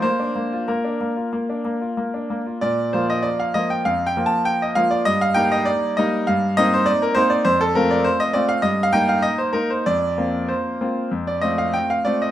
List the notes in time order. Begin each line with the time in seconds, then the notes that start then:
0.02 A#3 C5
0.20 D4
0.36 A#3
0.53 F4
0.68 A#3 A#4
0.84 D4
1.01 A#3
1.16 F4
1.33 A#3
1.49 D4
1.65 A#3
1.81 F4
1.97 A#3
2.14 D4
2.30 A#3
2.46 F4
2.61 A#2 D5
2.93 F3 A#3 F4 C5
3.10 D#5
3.23 D5
3.40 F5
3.54 F3 A#3 F4 D#5
3.70 G5
3.85 F2 F5
4.07 G5
4.17 F3 A#3 F4
4.26 A5
4.45 G5
4.62 D#5
4.75 F3 A#3 F4 F5
4.91 D5
5.05 G2 D#5
5.21 F5
5.34 G3 A#3 D#4 G5
5.52 D#5
5.65 D5
5.97 G3 A#3 D#4 D#5
6.27 G2 F5
6.57 A#3 C4 D#4 D#5
6.74 C5
6.86 D5
7.02 A#4
7.15 A#3 C4 D#4 C5
7.30 D5
7.45 F2 C5
7.61 A4
7.75 A3 C4 F4 A#4
7.91 D5
8.04 C5
8.20 D#5
8.33 A3 C4 F4 D5
8.49 F5
8.62 G2 D#5
8.83 F5
8.93 A#3 D#4 G5
9.09 F5
9.22 D#5
9.38 C5
9.53 A#3 D#4 A#4
9.70 C5
9.86 F2 D5
10.18 A#3 C4 F4
10.48 C5
10.81 A#3 C4 F4
11.11 F2
11.27 D5
11.41 A3 C4 F4 D#5
11.58 F5
11.74 G5
11.90 F5
12.05 A3 C4 F4 D5
12.22 D#5